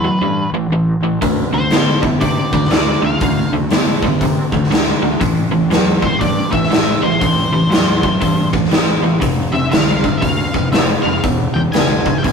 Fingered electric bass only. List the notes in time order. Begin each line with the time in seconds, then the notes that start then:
0.21 G2
0.52 A1
0.70 A1
1.01 A1
1.21 D2
1.52 D2
1.70 A2
2.21 C3
2.52 D2
2.70 D2
3.02 D2
3.21 D2
3.52 D2
3.70 A2
4.21 C3
4.52 D2
4.70 D2
5.02 D2
5.21 A1
5.52 A1
5.69 E2
6.21 G2
6.53 A1
6.71 A1
7.03 A1
7.20 A1
7.53 A1
7.72 E2
8.22 G2
8.53 A1
8.71 A1
9.03 A1
9.22 F1
9.53 F1
9.72 C2
10.22 D2
10.54 F1
10.72 F1
11.04 F1
11.23 E1
11.54 E1
11.74 B1
12.24 D2